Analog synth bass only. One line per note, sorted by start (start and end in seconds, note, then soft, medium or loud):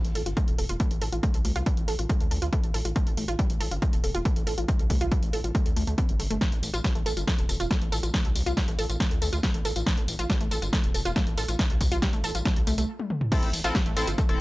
0.04 0.12 A1 medium
0.15 0.22 A1 medium
0.26 0.33 G1 medium
0.48 0.55 E1 medium
0.58 0.66 E1 loud
0.69 0.76 E1 medium
0.91 0.98 A1 medium
1.01 1.09 A1 loud
1.12 1.20 A1 medium
1.34 1.41 C2 medium
1.45 1.52 C2 loud
1.56 1.63 C2 medium
1.77 1.84 A1 medium
1.88 1.95 A1 loud
1.99 2.06 A1 medium
2.20 2.27 D2 medium
2.31 2.38 D2 loud
2.42 2.49 D2 medium
2.63 2.71 A1 medium
2.74 2.81 A1 loud
2.85 2.92 A1 medium
3.07 3.14 A1 medium
3.17 3.25 A1 loud
3.28 3.35 A1 medium
3.50 3.57 A1 medium
3.61 3.68 A1 loud
3.71 3.78 G1 medium
3.93 4.00 E1 medium
4.04 4.11 E1 loud
4.15 4.22 E1 medium
4.36 4.43 A1 medium
4.47 4.54 A1 loud
4.58 4.65 A1 medium
4.79 4.86 C2 medium
4.90 4.97 C2 loud
5.01 5.08 C2 medium
5.23 5.30 A1 medium
5.33 5.40 A1 loud
5.44 5.51 A1 medium
5.66 5.73 D2 medium
5.76 5.84 D2 loud
5.87 5.94 D2 medium
6.09 6.16 G1 medium
6.20 6.27 G1 loud
6.30 6.38 G1 medium
6.52 6.59 A1 medium
6.63 6.70 A1 loud
6.74 6.81 A1 medium
6.95 7.02 A1 medium
7.06 7.13 A1 loud
7.17 7.24 G1 loud
7.38 7.45 E1 medium
7.49 7.56 E1 loud
7.60 7.67 E1 medium
7.82 7.89 A1 medium
7.92 7.99 A1 loud
8.03 8.10 A1 medium
8.25 8.32 C2 medium
8.35 8.43 C2 loud
8.46 8.53 C2 medium
8.68 8.75 A1 medium
8.79 8.86 A1 loud
8.89 8.96 A1 medium
9.11 9.18 D2 medium
9.22 9.29 D2 loud
9.33 9.40 D2 medium
9.54 9.61 A1 medium
9.65 9.72 A1 loud
9.76 9.83 A1 medium
9.97 10.04 A1 medium
10.08 10.15 A1 loud
10.19 10.26 A1 medium
10.41 10.48 A1 medium
10.51 10.58 A1 loud
10.62 10.69 G1 loud
10.84 10.91 E1 medium
10.94 11.02 E1 loud
11.05 11.12 E1 medium
11.27 11.34 A1 medium
11.38 11.45 A1 loud
11.48 11.55 A1 medium
11.70 11.77 C2 medium
11.81 11.88 C2 loud
11.92 11.99 C2 medium
12.13 12.20 A1 medium
12.24 12.31 A1 medium
12.35 12.42 A1 loud
12.56 12.63 C2 medium
12.67 12.74 C2 loud
12.78 12.85 C2 medium
13.43 13.50 A1 medium
13.53 13.61 A1 loud
13.64 13.71 A1 medium
13.86 13.93 A1 medium
13.97 14.04 A1 loud
14.07 14.14 G1 loud
14.29 14.36 E1 medium